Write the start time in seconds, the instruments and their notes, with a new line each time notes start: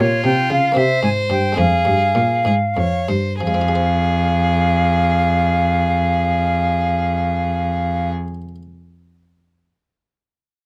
Already playing: harpsichord A#3 F4 G4
0.00 harpsichord A#2, cello A#2, violin F4, flute C#5
0.24 harpsichord C3, cello C3, flute G5
0.50 harpsichord C#3, cello C#3, flute F5
0.72 harpsichord A#3 C4 G4, violin C5
0.76 cello C3, harpsichord C3, flute E5
1.03 harpsichord G#2, cello G#2, flute G#5
1.30 harpsichord G2, cello G2, flute G5
1.52 harpsichord G#3 C4 G#4
1.57 harpsichord F2, cello F2, violin G#4, flute F5
1.85 harpsichord G2, cello G2
2.15 harpsichord A#2, cello A#2
2.45 harpsichord G#2, cello G#2, violin G#4
2.75 harpsichord F2, cello F2, violin C#5
3.08 harpsichord G2, cello G2, violin C5
3.41 cello F2, harpsichord F3, violin G#4, flute F5
3.47 harpsichord G#3
3.54 harpsichord C4
3.61 harpsichord F4
3.68 harpsichord G#4
3.75 harpsichord C5